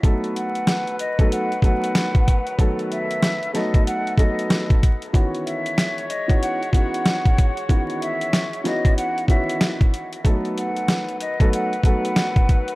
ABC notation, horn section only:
X:1
M:4/4
L:1/8
Q:"Swing 16ths" 1/4=94
K:Bmix
V:1 name="Horn section" clef=bass
[D,F,B]8- | [D,F,B]6- [D,F,B] z | [G,Fc]8- | [G,Fc]6- [G,Fc] z |
[D,F,B]8 |]